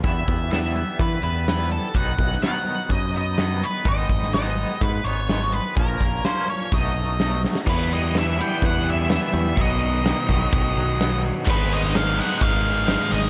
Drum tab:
CC |----------------|----------------|----------------|----------------|
HH |o-o-o-o-o-o-o-o-|o-o-o-o-o-o-o-o-|o-o-o-o-o-o-o-o-|o-o-o-o-o-o-o---|
SD |----o-------o---|---oo-------o---|---oo-------o---|----o-------o-oo|
BD |o-o-----o-------|o-o-----o-------|o-o-----o-------|o-o-----o-------|

CC |x---------------|----------------|----------------|
HH |----o---o---o---|o---o---o---o---|o---o---o---o---|
SD |----o-------o---|----o-------o---|---oo-------o---|
BD |o-------o-------|o-----o-o-------|o-------o-------|